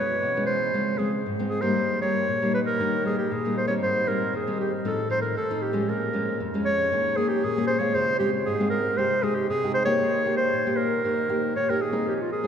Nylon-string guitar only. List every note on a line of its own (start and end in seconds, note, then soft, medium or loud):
0.00 0.19 B2 medium
0.00 0.30 E3 medium
0.00 0.31 G#3 medium
0.00 0.31 C#4 medium
0.22 0.71 B2 medium
0.36 0.70 E3 medium
0.36 0.70 G#3 medium
0.36 0.71 C#4 medium
0.74 1.23 C#3 medium
0.74 0.96 F3 medium
0.74 0.96 G#3 medium
0.74 0.96 C4 medium
0.98 1.23 F3 soft
0.98 1.23 G#3 medium
0.98 1.24 C4 medium
1.26 1.75 G#2 medium
1.39 1.60 F3 medium
1.39 1.61 G#3 medium
1.39 1.61 C4 medium
1.62 1.97 G3 medium
1.62 1.98 A#3 medium
1.62 1.98 D#4 medium
1.77 2.26 D#3 medium
2.02 2.26 G3 medium
2.02 2.27 A#3 medium
2.02 2.27 D#4 medium
2.28 2.77 A#2 medium
2.42 2.76 G3 medium
2.42 2.76 A#3 medium
2.42 2.76 D#4 medium
2.80 3.29 D#3 medium
2.80 2.95 G3 soft
2.80 2.95 A#3 medium
2.80 2.95 D#4 medium
3.05 3.40 G3 medium
3.05 3.40 A#3 medium
3.05 3.40 D#4 medium
3.31 3.80 A#2 medium
3.45 3.66 G3 medium
3.45 3.66 A#3 medium
3.45 3.67 D#4 medium
3.67 4.03 G3 medium
3.67 4.03 C4 medium
3.67 4.04 D#4 medium
3.83 4.32 G#2 medium
4.07 4.32 G3 medium
4.07 4.32 C4 medium
4.07 4.32 D#4 medium
4.33 4.83 D#3 medium
4.47 4.82 G3 medium
4.47 4.82 C4 medium
4.47 4.82 D#4 medium
4.85 5.34 A2 medium
4.85 5.00 F3 medium
4.85 5.01 C4 medium
4.85 5.01 D#4 medium
5.10 5.35 F3 medium
5.10 5.35 C4 soft
5.10 5.35 D#4 medium
5.37 5.86 A2 medium
5.50 5.72 F3 medium
5.50 5.72 C4 medium
5.50 5.72 D#4 medium
5.73 6.09 F3 medium
5.73 6.09 G#3 medium
5.73 6.09 C#4 medium
5.89 6.38 A#2 medium
6.13 6.38 F3 medium
6.13 6.38 G#3 medium
6.13 6.39 C#4 medium
6.40 6.89 F2 medium
6.54 6.88 F3 medium
6.54 6.88 G#3 medium
6.54 6.89 C#4 medium
6.92 7.41 D#3 medium
6.92 7.14 A#3 medium
6.92 7.14 C#4 medium
6.92 7.14 G#4 medium
7.17 7.52 A#3 medium
7.17 7.52 C#4 medium
7.17 7.52 G#4 medium
7.44 7.92 A#2 medium
7.57 7.79 A#3 medium
7.57 7.79 C#4 medium
7.57 7.79 G#4 medium
7.79 8.15 G#3 medium
7.79 8.16 C4 medium
7.79 8.16 F4 medium
7.95 8.44 C#3 medium
8.20 8.55 G#3 medium
8.20 8.55 C4 medium
8.20 8.55 F4 medium
8.46 8.95 G#2 medium
8.60 8.94 G#3 medium
8.60 8.94 C4 medium
8.60 8.95 F4 medium
8.98 9.47 C3 medium
8.98 9.13 G#3 medium
8.98 9.13 D#4 medium
8.98 9.14 G4 medium
9.23 9.47 G#3 medium
9.23 9.48 D#4 medium
9.23 9.48 G4 medium
9.50 9.99 C3 medium
9.63 9.85 G#3 medium
9.63 9.85 D#4 medium
9.63 9.85 G4 medium
9.86 10.21 A#3 medium
9.86 10.22 D#4 medium
9.86 10.22 G4 medium
10.01 10.50 D#3 medium
10.26 10.61 A#3 medium
10.26 10.61 D#4 medium
10.26 10.61 G4 medium
10.53 11.02 A#2 medium
10.66 11.00 A#3 medium
10.66 11.01 D#4 medium
10.66 11.01 G4 medium
11.04 11.53 D#3 medium
11.04 11.19 A#3 medium
11.04 11.20 D#4 soft
11.04 11.20 G4 medium
11.29 11.54 A#3 medium
11.29 11.54 D#4 medium
11.29 11.54 G4 medium
11.56 12.05 A#2 medium
11.69 11.91 A#3 medium
11.69 11.91 D#4 medium
11.69 11.91 G4 medium
11.92 12.28 C4 medium
11.92 12.28 D#4 medium
11.92 12.28 G#4 medium
12.07 12.47 F3 medium
12.43 12.47 C4 medium
12.43 12.47 D#4 medium